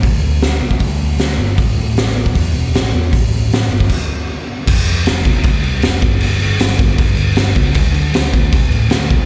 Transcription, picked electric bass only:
X:1
M:4/4
L:1/8
Q:1/4=155
K:Ador
V:1 name="Picked electric bass" clef=bass
D,, D,, D,, C,, D,,2 D,, G,,, | A,,, A,, A,,,2 E,, E,,, A,,, E,, | A,,, A,,, A,,, G,,, z4 | =F,,, =F,, F,,, F,,, D,, C,, F,,, G,,, |
G,,, G,,, G,,,2 G,,, G,,, G,,, ^C,, | D,, D, D,, D,, C, A,, D,, C,, |]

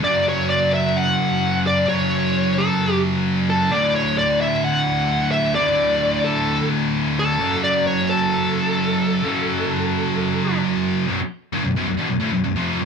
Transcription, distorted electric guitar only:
X:1
M:4/4
L:1/16
Q:1/4=130
K:F#phr
V:1 name="Distorted electric guitar" clef=bass
[F,,C,F,]16 | [F,,C,F,]16 | [D,,A,,D,]16 | [D,,A,,D,]16 |
[F,,C,F,]16 | [F,,C,F,]16 | [B,,,F,,] z3 [F,,C,] [B,,,F,,] [B,,,F,,] [B,,,F,,] [E,,B,,] [B,,,F,,] [D,,A,,] [B,,,F,,] [B,,,F,,] [^E,,=C,^E,]2 [B,,,F,,] |]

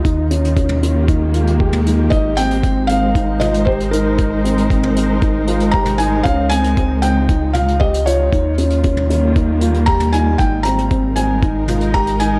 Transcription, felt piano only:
X:1
M:4/4
L:1/8
Q:1/4=116
K:Ab
V:1 name="Felt piano"
z8 | e g2 f2 e c B- | B z4 z b a | f a2 g2 f e d- |
d z4 z b a | g b2 a2 z b a |]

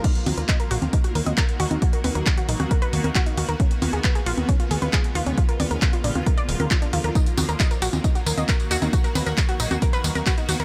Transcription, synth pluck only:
X:1
M:4/4
L:1/16
Q:1/4=135
K:Ebm
V:1 name="Synth pluck"
E z G B e B G z E G B e B z G E | ^F ^A =B A z F ^D F A B z A F D F A | D z F A c A F z D F A c A z F D | F B =d B z F =D F B d z B F D F B |
E z G B e B G z E G B e B z G E | ^F ^A =B A z F ^D F A B z A F D F A |]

